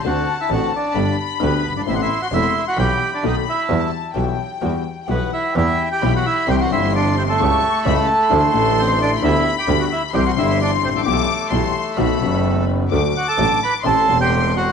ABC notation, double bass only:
X:1
M:4/4
L:1/8
Q:1/4=130
K:Em
V:1 name="Double bass" clef=bass
D,, z A,,, z G,,, z D,, G,,, | A,,, z E,,, z B,,, z B,,, z | E,, z B,,, z E,, z B,,, z | E,, z B,,, z C,, G,,,3 |
^C,, z C,, z D,, A,,,3 | D,, z D,, z C,, G,,,2 A,,, | B,,, z B,,, z B,,, F,,,3 | D,, z A,,, z A,,, E,,,3 |]